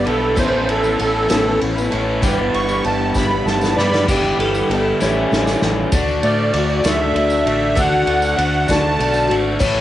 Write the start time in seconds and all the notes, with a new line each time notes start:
0.04 B1 E3 G3 B3 D4 E4 A4 B4, ride
0.35 A1 A2 E3 A3 B3 C#4 E4 A4 C5, kick, tambourine, crash
0.50 B3 C#4 E4
0.69 A4, ride
0.83 B3 C#4 E4, tambourine
0.98 A1 E3 B3 C#4 E4 A4, ride
1.28 A1 A2 E3 B3 C#4 E4, snare, ride, tambourine
1.44 B3 C#4 E4
1.61 A1, ride
1.75 B3 C#4 E4, tambourine
1.90 A1 A2 E3 A3 B3 C#4 E4 A4, ride
2.22 G1 G2 D3 E3 G3 B3 D4 E4 B4, kick, ride, tambourine
2.37 E3 G3 B3 E4
2.54 G1 C#6, ride
2.68 E3 G3 B3 E4, tambourine
2.84 G1 E3 G3 B3 E4 A5, ride, tambourine
3.14 G1 G2 D3 E3 G3 B3 E4 B5, kick, snare, tambourine
3.31 E3 G3 B3 E4
3.45 G1 A5, snare, tambourine
3.61 E3 G3 B3 E4, snare, tambourine
3.76 G2 E3 G3 B3 D4 B4 D5 B5, snare
3.81 E4
3.94 snare
4.08 G1 G2 D3 E3 G3 B3 D4 E4 G4, kick, crash, tambourine
4.24 tambourine
4.39 G1 A4, ride
4.55 tambourine
4.69 G1 E3 G3 B3 E4 A4, ride
5.00 A1 A2 E3 G3 C#4 E4 G4, snare, tambourine
5.31 A1, snare, tambourine
5.47 snare, tambourine
5.61 A1 G3 C#4 E4, snare, tambourine
5.92 D2 D3 A3 D4 F#4, kick, ride, tambourine
6.08 tambourine
6.23 A2 A3 D5, ride
6.53 D2 D3 A3 D4 F#4, ride
6.69 tambourine
6.83 D2 D3 A3 D4 F#4 E5, snare, ride, tambourine
7.15 D2 D3, ride
7.30 tambourine
7.45 A1 A3 D4 F#4, ride
7.75 D2 D3 A3 D4 F#4, kick, ride, tambourine
7.79 F#5
7.92 tambourine
8.07 D2 A3, ride
8.22 tambourine
8.36 D2 D3 A3 D4 F#4, ride
8.53 tambourine
8.68 D2 D3 A3 D4 F#4 A5, kick, snare, ride, tambourine
8.99 B1 D3, ride
9.14 tambourine
9.28 G#1 A3 D4 F#4, ride
9.59 A1 A2 E3 A3 C#4 E4, kick, crash, tambourine